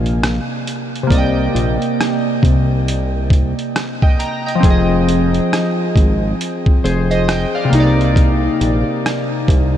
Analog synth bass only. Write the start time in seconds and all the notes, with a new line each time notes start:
Already playing: A#1
1.11 C2
1.55 A#1
2.43 C2
4.63 F1
5.96 G#1
6.84 F1
7.72 C2
8.61 A#1
9.48 C2